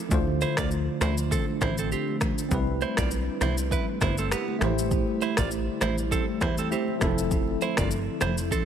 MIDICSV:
0, 0, Header, 1, 6, 480
1, 0, Start_track
1, 0, Key_signature, 0, "major"
1, 0, Tempo, 600000
1, 90, Time_signature, 4, 2, 24, 8
1, 6920, End_track
2, 0, Start_track
2, 0, Title_t, "Clean electric guitar"
2, 0, Program_c, 0, 27
2, 335, Note_on_c, 0, 72, 77
2, 342, Note_on_c, 0, 64, 60
2, 437, Note_off_c, 0, 72, 0
2, 441, Note_off_c, 0, 64, 0
2, 467, Note_on_c, 0, 74, 76
2, 473, Note_on_c, 0, 65, 57
2, 550, Note_off_c, 0, 74, 0
2, 554, Note_off_c, 0, 65, 0
2, 814, Note_on_c, 0, 72, 80
2, 821, Note_on_c, 0, 64, 60
2, 917, Note_off_c, 0, 72, 0
2, 921, Note_off_c, 0, 64, 0
2, 1056, Note_on_c, 0, 69, 78
2, 1062, Note_on_c, 0, 60, 61
2, 1157, Note_off_c, 0, 69, 0
2, 1161, Note_off_c, 0, 60, 0
2, 1295, Note_on_c, 0, 72, 78
2, 1303, Note_on_c, 0, 64, 63
2, 1397, Note_off_c, 0, 72, 0
2, 1402, Note_off_c, 0, 64, 0
2, 1430, Note_on_c, 0, 69, 68
2, 1436, Note_on_c, 0, 60, 53
2, 1512, Note_off_c, 0, 69, 0
2, 1515, Note_off_c, 0, 60, 0
2, 1537, Note_on_c, 0, 67, 79
2, 1543, Note_on_c, 0, 60, 65
2, 1724, Note_off_c, 0, 67, 0
2, 1728, Note_off_c, 0, 60, 0
2, 2257, Note_on_c, 0, 72, 78
2, 2263, Note_on_c, 0, 64, 61
2, 2358, Note_off_c, 0, 72, 0
2, 2362, Note_off_c, 0, 64, 0
2, 2388, Note_on_c, 0, 74, 75
2, 2394, Note_on_c, 0, 65, 58
2, 2471, Note_off_c, 0, 74, 0
2, 2475, Note_off_c, 0, 65, 0
2, 2736, Note_on_c, 0, 72, 76
2, 2742, Note_on_c, 0, 64, 60
2, 2838, Note_off_c, 0, 72, 0
2, 2841, Note_off_c, 0, 64, 0
2, 2977, Note_on_c, 0, 71, 80
2, 2984, Note_on_c, 0, 64, 66
2, 3078, Note_off_c, 0, 71, 0
2, 3082, Note_off_c, 0, 64, 0
2, 3216, Note_on_c, 0, 72, 77
2, 3222, Note_on_c, 0, 64, 59
2, 3318, Note_off_c, 0, 72, 0
2, 3322, Note_off_c, 0, 64, 0
2, 3348, Note_on_c, 0, 69, 68
2, 3355, Note_on_c, 0, 60, 54
2, 3431, Note_off_c, 0, 69, 0
2, 3435, Note_off_c, 0, 60, 0
2, 3456, Note_on_c, 0, 67, 79
2, 3463, Note_on_c, 0, 59, 64
2, 3643, Note_off_c, 0, 67, 0
2, 3647, Note_off_c, 0, 59, 0
2, 4176, Note_on_c, 0, 72, 77
2, 4183, Note_on_c, 0, 64, 58
2, 4278, Note_off_c, 0, 72, 0
2, 4282, Note_off_c, 0, 64, 0
2, 4309, Note_on_c, 0, 74, 75
2, 4314, Note_on_c, 0, 65, 57
2, 4391, Note_off_c, 0, 74, 0
2, 4395, Note_off_c, 0, 65, 0
2, 4655, Note_on_c, 0, 72, 82
2, 4662, Note_on_c, 0, 64, 62
2, 4757, Note_off_c, 0, 72, 0
2, 4762, Note_off_c, 0, 64, 0
2, 4896, Note_on_c, 0, 69, 87
2, 4903, Note_on_c, 0, 60, 66
2, 4998, Note_off_c, 0, 69, 0
2, 5002, Note_off_c, 0, 60, 0
2, 5136, Note_on_c, 0, 72, 80
2, 5142, Note_on_c, 0, 64, 63
2, 5238, Note_off_c, 0, 72, 0
2, 5242, Note_off_c, 0, 64, 0
2, 5268, Note_on_c, 0, 69, 70
2, 5275, Note_on_c, 0, 60, 55
2, 5351, Note_off_c, 0, 69, 0
2, 5355, Note_off_c, 0, 60, 0
2, 5375, Note_on_c, 0, 67, 80
2, 5382, Note_on_c, 0, 60, 64
2, 5562, Note_off_c, 0, 67, 0
2, 5566, Note_off_c, 0, 60, 0
2, 6098, Note_on_c, 0, 72, 77
2, 6104, Note_on_c, 0, 64, 59
2, 6199, Note_off_c, 0, 72, 0
2, 6202, Note_off_c, 0, 64, 0
2, 6228, Note_on_c, 0, 74, 71
2, 6234, Note_on_c, 0, 65, 58
2, 6311, Note_off_c, 0, 74, 0
2, 6315, Note_off_c, 0, 65, 0
2, 6576, Note_on_c, 0, 72, 80
2, 6583, Note_on_c, 0, 64, 60
2, 6678, Note_off_c, 0, 72, 0
2, 6682, Note_off_c, 0, 64, 0
2, 6816, Note_on_c, 0, 69, 83
2, 6822, Note_on_c, 0, 60, 64
2, 6918, Note_off_c, 0, 69, 0
2, 6920, Note_off_c, 0, 60, 0
2, 6920, End_track
3, 0, Start_track
3, 0, Title_t, "Tine electric piano"
3, 0, Program_c, 1, 4
3, 0, Control_c, 1, 64, 127
3, 69, Note_on_c, 1, 50, 80
3, 83, Note_on_c, 1, 57, 70
3, 96, Note_on_c, 1, 65, 71
3, 101, Control_c, 1, 64, 0
3, 109, Note_on_c, 1, 72, 81
3, 241, Control_c, 1, 64, 127
3, 1968, Note_off_c, 1, 50, 0
3, 1974, Note_off_c, 1, 57, 0
3, 1981, Note_off_c, 1, 65, 0
3, 1987, Note_off_c, 1, 72, 0
3, 1990, Note_on_c, 1, 60, 74
3, 2002, Note_on_c, 1, 55, 68
3, 2016, Note_on_c, 1, 64, 67
3, 2020, Control_c, 1, 64, 0
3, 2029, Note_on_c, 1, 71, 83
3, 2153, Control_c, 1, 64, 127
3, 3648, Note_off_c, 1, 60, 0
3, 3654, Note_off_c, 1, 55, 0
3, 3661, Note_off_c, 1, 64, 0
3, 3667, Note_off_c, 1, 71, 0
3, 3671, Note_on_c, 1, 57, 78
3, 3683, Note_on_c, 1, 64, 72
3, 3697, Note_on_c, 1, 67, 71
3, 3699, Control_c, 1, 64, 0
3, 3710, Note_on_c, 1, 72, 88
3, 3856, Control_c, 1, 64, 127
3, 5328, Note_off_c, 1, 57, 0
3, 5334, Note_off_c, 1, 64, 0
3, 5341, Note_off_c, 1, 67, 0
3, 5348, Note_off_c, 1, 72, 0
3, 5361, Note_on_c, 1, 57, 61
3, 5368, Note_on_c, 1, 64, 55
3, 5374, Note_on_c, 1, 67, 55
3, 5381, Note_on_c, 1, 72, 68
3, 5592, Note_on_c, 1, 53, 80
3, 5605, Note_off_c, 1, 57, 0
3, 5605, Note_on_c, 1, 60, 70
3, 5609, Note_off_c, 1, 64, 0
3, 5612, Note_off_c, 1, 67, 0
3, 5615, Note_off_c, 1, 72, 0
3, 5619, Note_on_c, 1, 64, 69
3, 5620, Control_c, 1, 64, 0
3, 5631, Note_on_c, 1, 69, 84
3, 5736, Control_c, 1, 64, 127
3, 6920, Note_off_c, 1, 53, 0
3, 6920, Note_off_c, 1, 60, 0
3, 6920, Note_off_c, 1, 64, 0
3, 6920, Note_off_c, 1, 69, 0
3, 6920, End_track
4, 0, Start_track
4, 0, Title_t, "Ambient pad"
4, 0, Program_c, 2, 92
4, 0, Note_on_c, 2, 53, 71
4, 0, Note_on_c, 2, 57, 70
4, 88, Note_on_c, 2, 62, 82
4, 89, Note_on_c, 2, 50, 75
4, 1978, Note_off_c, 2, 57, 0
4, 1979, Note_off_c, 2, 53, 0
4, 1990, Note_off_c, 2, 62, 0
4, 2008, Note_on_c, 2, 71, 67
4, 2009, Note_on_c, 2, 55, 68
4, 2009, Note_on_c, 2, 64, 81
4, 3672, Note_off_c, 2, 71, 0
4, 3688, Note_on_c, 2, 57, 68
4, 5577, Note_off_c, 2, 55, 0
4, 5577, Note_off_c, 2, 64, 0
4, 5610, Note_on_c, 2, 53, 71
4, 5610, Note_on_c, 2, 64, 90
4, 6920, Note_off_c, 2, 50, 0
4, 6920, Note_off_c, 2, 53, 0
4, 6920, Note_off_c, 2, 57, 0
4, 6920, Note_off_c, 2, 64, 0
4, 6920, End_track
5, 0, Start_track
5, 0, Title_t, "Analog synth bass"
5, 0, Program_c, 3, 38
5, 90, Note_on_c, 3, 38, 105
5, 358, Note_off_c, 3, 38, 0
5, 462, Note_on_c, 3, 38, 91
5, 713, Note_off_c, 3, 38, 0
5, 809, Note_on_c, 3, 38, 99
5, 1077, Note_off_c, 3, 38, 0
5, 1289, Note_on_c, 3, 33, 102
5, 1557, Note_off_c, 3, 33, 0
5, 2010, Note_on_c, 3, 36, 106
5, 2278, Note_off_c, 3, 36, 0
5, 2382, Note_on_c, 3, 35, 85
5, 2633, Note_off_c, 3, 35, 0
5, 2729, Note_on_c, 3, 36, 90
5, 2997, Note_off_c, 3, 36, 0
5, 3208, Note_on_c, 3, 31, 101
5, 3477, Note_off_c, 3, 31, 0
5, 3689, Note_on_c, 3, 33, 100
5, 4035, Note_off_c, 3, 33, 0
5, 4303, Note_on_c, 3, 33, 89
5, 4553, Note_off_c, 3, 33, 0
5, 4650, Note_on_c, 3, 33, 89
5, 4918, Note_off_c, 3, 33, 0
5, 5130, Note_on_c, 3, 40, 96
5, 5398, Note_off_c, 3, 40, 0
5, 5610, Note_on_c, 3, 29, 95
5, 6051, Note_off_c, 3, 29, 0
5, 6222, Note_on_c, 3, 31, 91
5, 6473, Note_off_c, 3, 31, 0
5, 6569, Note_on_c, 3, 29, 99
5, 6837, Note_off_c, 3, 29, 0
5, 6920, End_track
6, 0, Start_track
6, 0, Title_t, "Drums"
6, 88, Note_on_c, 9, 82, 65
6, 90, Note_on_c, 9, 36, 117
6, 92, Note_on_c, 9, 64, 69
6, 168, Note_off_c, 9, 82, 0
6, 170, Note_off_c, 9, 36, 0
6, 172, Note_off_c, 9, 64, 0
6, 218, Note_on_c, 9, 63, 72
6, 298, Note_off_c, 9, 63, 0
6, 329, Note_on_c, 9, 82, 43
6, 330, Note_on_c, 9, 63, 77
6, 409, Note_off_c, 9, 82, 0
6, 410, Note_off_c, 9, 63, 0
6, 456, Note_on_c, 9, 37, 113
6, 461, Note_on_c, 9, 26, 91
6, 462, Note_on_c, 9, 36, 92
6, 462, Note_on_c, 9, 82, 83
6, 536, Note_off_c, 9, 37, 0
6, 541, Note_off_c, 9, 26, 0
6, 542, Note_off_c, 9, 36, 0
6, 542, Note_off_c, 9, 82, 0
6, 568, Note_on_c, 9, 82, 79
6, 648, Note_off_c, 9, 82, 0
6, 809, Note_on_c, 9, 37, 81
6, 809, Note_on_c, 9, 82, 59
6, 813, Note_on_c, 9, 63, 80
6, 813, Note_on_c, 9, 64, 82
6, 814, Note_on_c, 9, 26, 64
6, 889, Note_off_c, 9, 37, 0
6, 889, Note_off_c, 9, 82, 0
6, 893, Note_off_c, 9, 63, 0
6, 893, Note_off_c, 9, 64, 0
6, 894, Note_off_c, 9, 26, 0
6, 941, Note_on_c, 9, 82, 81
6, 1021, Note_off_c, 9, 82, 0
6, 1049, Note_on_c, 9, 36, 88
6, 1051, Note_on_c, 9, 64, 87
6, 1056, Note_on_c, 9, 82, 82
6, 1129, Note_off_c, 9, 36, 0
6, 1131, Note_off_c, 9, 64, 0
6, 1136, Note_off_c, 9, 82, 0
6, 1183, Note_on_c, 9, 63, 68
6, 1263, Note_off_c, 9, 63, 0
6, 1288, Note_on_c, 9, 36, 84
6, 1289, Note_on_c, 9, 82, 43
6, 1293, Note_on_c, 9, 37, 89
6, 1298, Note_on_c, 9, 26, 69
6, 1368, Note_off_c, 9, 36, 0
6, 1369, Note_off_c, 9, 82, 0
6, 1373, Note_off_c, 9, 37, 0
6, 1378, Note_off_c, 9, 26, 0
6, 1417, Note_on_c, 9, 63, 76
6, 1422, Note_on_c, 9, 82, 74
6, 1497, Note_off_c, 9, 63, 0
6, 1502, Note_off_c, 9, 82, 0
6, 1534, Note_on_c, 9, 82, 67
6, 1614, Note_off_c, 9, 82, 0
6, 1663, Note_on_c, 9, 63, 73
6, 1743, Note_off_c, 9, 63, 0
6, 1767, Note_on_c, 9, 37, 83
6, 1767, Note_on_c, 9, 82, 44
6, 1769, Note_on_c, 9, 36, 91
6, 1772, Note_on_c, 9, 26, 67
6, 1773, Note_on_c, 9, 63, 58
6, 1773, Note_on_c, 9, 64, 89
6, 1847, Note_off_c, 9, 37, 0
6, 1847, Note_off_c, 9, 82, 0
6, 1849, Note_off_c, 9, 36, 0
6, 1852, Note_off_c, 9, 26, 0
6, 1853, Note_off_c, 9, 63, 0
6, 1853, Note_off_c, 9, 64, 0
6, 1906, Note_on_c, 9, 82, 83
6, 1986, Note_off_c, 9, 82, 0
6, 2009, Note_on_c, 9, 82, 64
6, 2010, Note_on_c, 9, 36, 116
6, 2011, Note_on_c, 9, 64, 70
6, 2089, Note_off_c, 9, 82, 0
6, 2090, Note_off_c, 9, 36, 0
6, 2091, Note_off_c, 9, 64, 0
6, 2137, Note_on_c, 9, 63, 71
6, 2217, Note_off_c, 9, 63, 0
6, 2248, Note_on_c, 9, 82, 45
6, 2250, Note_on_c, 9, 63, 76
6, 2328, Note_off_c, 9, 82, 0
6, 2330, Note_off_c, 9, 63, 0
6, 2377, Note_on_c, 9, 37, 108
6, 2382, Note_on_c, 9, 26, 87
6, 2382, Note_on_c, 9, 36, 96
6, 2382, Note_on_c, 9, 82, 83
6, 2457, Note_off_c, 9, 37, 0
6, 2462, Note_off_c, 9, 26, 0
6, 2462, Note_off_c, 9, 36, 0
6, 2462, Note_off_c, 9, 82, 0
6, 2488, Note_on_c, 9, 82, 81
6, 2568, Note_off_c, 9, 82, 0
6, 2728, Note_on_c, 9, 37, 75
6, 2728, Note_on_c, 9, 82, 54
6, 2732, Note_on_c, 9, 63, 82
6, 2732, Note_on_c, 9, 64, 81
6, 2733, Note_on_c, 9, 26, 62
6, 2808, Note_off_c, 9, 37, 0
6, 2808, Note_off_c, 9, 82, 0
6, 2812, Note_off_c, 9, 63, 0
6, 2812, Note_off_c, 9, 64, 0
6, 2813, Note_off_c, 9, 26, 0
6, 2861, Note_on_c, 9, 82, 84
6, 2941, Note_off_c, 9, 82, 0
6, 2969, Note_on_c, 9, 36, 85
6, 2971, Note_on_c, 9, 64, 89
6, 2975, Note_on_c, 9, 82, 79
6, 3049, Note_off_c, 9, 36, 0
6, 3051, Note_off_c, 9, 64, 0
6, 3055, Note_off_c, 9, 82, 0
6, 3104, Note_on_c, 9, 63, 67
6, 3184, Note_off_c, 9, 63, 0
6, 3207, Note_on_c, 9, 82, 44
6, 3208, Note_on_c, 9, 36, 79
6, 3211, Note_on_c, 9, 37, 84
6, 3217, Note_on_c, 9, 26, 67
6, 3287, Note_off_c, 9, 82, 0
6, 3288, Note_off_c, 9, 36, 0
6, 3291, Note_off_c, 9, 37, 0
6, 3297, Note_off_c, 9, 26, 0
6, 3337, Note_on_c, 9, 63, 77
6, 3341, Note_on_c, 9, 82, 72
6, 3417, Note_off_c, 9, 63, 0
6, 3421, Note_off_c, 9, 82, 0
6, 3452, Note_on_c, 9, 37, 92
6, 3454, Note_on_c, 9, 82, 67
6, 3457, Note_on_c, 9, 26, 74
6, 3532, Note_off_c, 9, 37, 0
6, 3534, Note_off_c, 9, 82, 0
6, 3537, Note_off_c, 9, 26, 0
6, 3584, Note_on_c, 9, 63, 78
6, 3664, Note_off_c, 9, 63, 0
6, 3689, Note_on_c, 9, 37, 81
6, 3689, Note_on_c, 9, 82, 43
6, 3694, Note_on_c, 9, 26, 66
6, 3696, Note_on_c, 9, 63, 63
6, 3696, Note_on_c, 9, 64, 84
6, 3769, Note_off_c, 9, 37, 0
6, 3769, Note_off_c, 9, 82, 0
6, 3774, Note_off_c, 9, 26, 0
6, 3776, Note_off_c, 9, 63, 0
6, 3776, Note_off_c, 9, 64, 0
6, 3828, Note_on_c, 9, 82, 82
6, 3908, Note_off_c, 9, 82, 0
6, 3928, Note_on_c, 9, 82, 65
6, 3930, Note_on_c, 9, 36, 115
6, 3933, Note_on_c, 9, 64, 70
6, 4008, Note_off_c, 9, 82, 0
6, 4010, Note_off_c, 9, 36, 0
6, 4013, Note_off_c, 9, 64, 0
6, 4058, Note_on_c, 9, 63, 74
6, 4138, Note_off_c, 9, 63, 0
6, 4171, Note_on_c, 9, 63, 76
6, 4171, Note_on_c, 9, 82, 45
6, 4251, Note_off_c, 9, 63, 0
6, 4251, Note_off_c, 9, 82, 0
6, 4296, Note_on_c, 9, 37, 107
6, 4301, Note_on_c, 9, 26, 88
6, 4301, Note_on_c, 9, 82, 84
6, 4302, Note_on_c, 9, 36, 92
6, 4376, Note_off_c, 9, 37, 0
6, 4381, Note_off_c, 9, 26, 0
6, 4381, Note_off_c, 9, 82, 0
6, 4382, Note_off_c, 9, 36, 0
6, 4409, Note_on_c, 9, 82, 79
6, 4489, Note_off_c, 9, 82, 0
6, 4649, Note_on_c, 9, 37, 80
6, 4650, Note_on_c, 9, 82, 58
6, 4654, Note_on_c, 9, 26, 65
6, 4655, Note_on_c, 9, 63, 80
6, 4655, Note_on_c, 9, 64, 81
6, 4729, Note_off_c, 9, 37, 0
6, 4730, Note_off_c, 9, 82, 0
6, 4734, Note_off_c, 9, 26, 0
6, 4735, Note_off_c, 9, 63, 0
6, 4735, Note_off_c, 9, 64, 0
6, 4783, Note_on_c, 9, 82, 82
6, 4863, Note_off_c, 9, 82, 0
6, 4890, Note_on_c, 9, 36, 87
6, 4891, Note_on_c, 9, 64, 85
6, 4896, Note_on_c, 9, 82, 82
6, 4970, Note_off_c, 9, 36, 0
6, 4971, Note_off_c, 9, 64, 0
6, 4976, Note_off_c, 9, 82, 0
6, 5025, Note_on_c, 9, 63, 67
6, 5105, Note_off_c, 9, 63, 0
6, 5128, Note_on_c, 9, 82, 44
6, 5129, Note_on_c, 9, 36, 83
6, 5132, Note_on_c, 9, 37, 82
6, 5138, Note_on_c, 9, 26, 67
6, 5208, Note_off_c, 9, 82, 0
6, 5209, Note_off_c, 9, 36, 0
6, 5212, Note_off_c, 9, 37, 0
6, 5218, Note_off_c, 9, 26, 0
6, 5259, Note_on_c, 9, 63, 77
6, 5262, Note_on_c, 9, 82, 70
6, 5339, Note_off_c, 9, 63, 0
6, 5342, Note_off_c, 9, 82, 0
6, 5374, Note_on_c, 9, 82, 69
6, 5454, Note_off_c, 9, 82, 0
6, 5504, Note_on_c, 9, 63, 75
6, 5584, Note_off_c, 9, 63, 0
6, 5609, Note_on_c, 9, 37, 83
6, 5609, Note_on_c, 9, 82, 42
6, 5610, Note_on_c, 9, 36, 93
6, 5614, Note_on_c, 9, 26, 67
6, 5616, Note_on_c, 9, 63, 62
6, 5616, Note_on_c, 9, 64, 83
6, 5689, Note_off_c, 9, 37, 0
6, 5689, Note_off_c, 9, 82, 0
6, 5690, Note_off_c, 9, 36, 0
6, 5694, Note_off_c, 9, 26, 0
6, 5696, Note_off_c, 9, 63, 0
6, 5696, Note_off_c, 9, 64, 0
6, 5746, Note_on_c, 9, 82, 82
6, 5826, Note_off_c, 9, 82, 0
6, 5849, Note_on_c, 9, 82, 64
6, 5850, Note_on_c, 9, 36, 114
6, 5854, Note_on_c, 9, 64, 68
6, 5929, Note_off_c, 9, 82, 0
6, 5930, Note_off_c, 9, 36, 0
6, 5934, Note_off_c, 9, 64, 0
6, 5980, Note_on_c, 9, 63, 74
6, 6060, Note_off_c, 9, 63, 0
6, 6091, Note_on_c, 9, 82, 46
6, 6092, Note_on_c, 9, 63, 79
6, 6171, Note_off_c, 9, 82, 0
6, 6172, Note_off_c, 9, 63, 0
6, 6216, Note_on_c, 9, 37, 110
6, 6222, Note_on_c, 9, 26, 86
6, 6222, Note_on_c, 9, 36, 91
6, 6222, Note_on_c, 9, 82, 84
6, 6296, Note_off_c, 9, 37, 0
6, 6302, Note_off_c, 9, 26, 0
6, 6302, Note_off_c, 9, 36, 0
6, 6302, Note_off_c, 9, 82, 0
6, 6327, Note_on_c, 9, 82, 80
6, 6407, Note_off_c, 9, 82, 0
6, 6567, Note_on_c, 9, 37, 78
6, 6567, Note_on_c, 9, 82, 55
6, 6572, Note_on_c, 9, 26, 63
6, 6574, Note_on_c, 9, 63, 76
6, 6574, Note_on_c, 9, 64, 79
6, 6647, Note_off_c, 9, 37, 0
6, 6647, Note_off_c, 9, 82, 0
6, 6652, Note_off_c, 9, 26, 0
6, 6654, Note_off_c, 9, 63, 0
6, 6654, Note_off_c, 9, 64, 0
6, 6701, Note_on_c, 9, 82, 81
6, 6781, Note_off_c, 9, 82, 0
6, 6809, Note_on_c, 9, 36, 83
6, 6813, Note_on_c, 9, 64, 84
6, 6816, Note_on_c, 9, 82, 83
6, 6889, Note_off_c, 9, 36, 0
6, 6893, Note_off_c, 9, 64, 0
6, 6896, Note_off_c, 9, 82, 0
6, 6920, End_track
0, 0, End_of_file